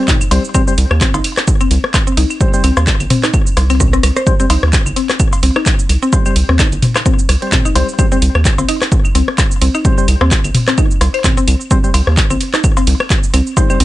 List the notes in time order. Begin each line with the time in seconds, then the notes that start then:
0.08 D#4, kick, clap, mid tom, shaker
0.21 claves, shaker
0.31 C2 G3 C4 C5, open hi-hat, ride, cowbell
0.44 shaker
0.55 G3 C4 C5, kick, claves, shaker
0.68 G3 C4 C5, shaker
0.78 C2, open hi-hat, ride
0.91 D#2, cross-stick, claves
1.01 C4, kick, clap, open hi-hat, shaker
1.14 G1 D#4, cowbell, shaker
1.24 open hi-hat, ride, claves
1.37 cross-stick, clap, shaker
1.48 kick, shaker
1.61 C4, claves, shaker
1.71 C2, open hi-hat, ride
1.84 cross-stick
1.94 kick, clap, cowbell, claves, shaker
2.07 C4, shaker
2.17 C2 D#4, open hi-hat, ride
2.30 claves, shaker
2.41 G3 C4 C5, kick, shaker
2.54 G3 C4 C5, shaker
2.64 C2 C4, open hi-hat, ride, claves
2.77 D#2, cross-stick, cowbell, shaker
2.87 kick, clap, open hi-hat, shaker
3.00 G1, open hi-hat, claves, shaker
3.10 C4, mid tom, open hi-hat, ride
3.23 D#4, cross-stick, clap, shaker
3.34 kick, claves, shaker
3.47 shaker
3.57 C2, cross-stick, open hi-hat, ride, cowbell
3.70 C4, ride, claves, shaker
3.80 C4, kick, cross-stick, mid tom, shaker
3.93 A#1 C4, cross-stick, shaker
4.03 C2, cross-stick, open hi-hat, ride, claves
4.16 C5, cross-stick, shaker
4.27 G3 C4 C5, kick, shaker
4.40 G3 C4 C5, shaker
4.50 C2 D#4, open hi-hat, ride, cowbell, claves
4.63 D#2, cross-stick
4.73 kick, clap, open hi-hat, shaker
4.86 G1, claves, shaker
4.96 C4, open hi-hat, ride
5.09 cross-stick, clap, shaker
5.20 kick, claves, shaker
5.33 cowbell, shaker
5.43 C2 C4, open hi-hat, ride
5.56 D#4, cross-stick, claves
5.66 kick, clap, shaker
5.79 shaker
5.89 C2, open hi-hat, ride, claves
6.03 C4, shaker
6.13 G3 C4 C5, kick, cowbell, shaker
6.26 G3 C4 C5, claves, shaker
6.36 C2, open hi-hat, ride
6.49 D#2 C4, cross-stick
6.59 D#4, kick, clap, open hi-hat, claves, shaker
6.72 G1, open hi-hat, shaker
6.82 mid tom, open hi-hat, ride
6.96 cross-stick, clap, cowbell, claves, shaker
7.06 C4, kick, shaker
7.19 shaker
7.29 C2, cross-stick, open hi-hat, ride, claves
7.42 G3 C4 C5, ride
7.52 C4, kick, clap, mid tom, shaker
7.65 D#4, claves, shaker
7.75 C2 G3 C4 C5, open hi-hat, ride, cowbell
7.89 shaker
7.99 G3 C4 C5, kick, claves, shaker
8.12 G3 C4 C5, shaker
8.22 C2, open hi-hat, ride
8.35 D#2, cross-stick, claves
8.45 kick, clap, open hi-hat, shaker
8.58 G1 C4, cowbell, shaker
8.69 D#4, open hi-hat, ride, claves
8.82 cross-stick, clap, shaker
8.92 kick, shaker
9.05 claves, shaker
9.15 C2 C4, open hi-hat, ride
9.28 cross-stick
9.38 kick, clap, cowbell, claves, shaker
9.51 shaker
9.61 C2 C4, open hi-hat, ride
9.75 D#4, claves, shaker
9.85 G3 C4 C5, kick, shaker
9.98 G3 C4 C5, shaker
10.08 C2, open hi-hat, ride, claves
10.21 D#2 C4, cross-stick, cowbell
10.31 kick, clap, open hi-hat, shaker
10.44 G1, open hi-hat, claves, shaker
10.54 mid tom, open hi-hat, ride
10.68 C4, cross-stick, clap, shaker
10.78 D#4, kick, claves, shaker
10.91 shaker
11.01 C2, cross-stick, open hi-hat, ride, cowbell
11.14 C5, ride, claves
11.24 C4, kick, clap, mid tom, shaker
11.37 C4, shaker
11.48 C2, open hi-hat, ride, claves
11.61 shaker
11.71 G3 C4 C5, kick, shaker
11.84 G3 C4 C5, shaker
11.94 C2, open hi-hat, ride, cowbell, claves
12.07 D#2, cross-stick
12.17 kick, clap, open hi-hat, shaker
12.30 G1 C4, claves, shaker
12.41 open hi-hat, ride
12.54 D#4, cross-stick, clap, shaker
12.64 kick, claves, shaker
12.77 C4, cowbell, shaker
12.87 C2, open hi-hat, ride
13.00 cross-stick, claves
13.10 kick, clap, shaker
13.23 shaker
13.34 C2 C4, open hi-hat, ride, claves
13.47 shaker
13.57 G3 C4 D#4 C5, kick, cowbell, shaker
13.70 G3 C4 C5, claves, shaker
13.80 C2 C4, open hi-hat, ride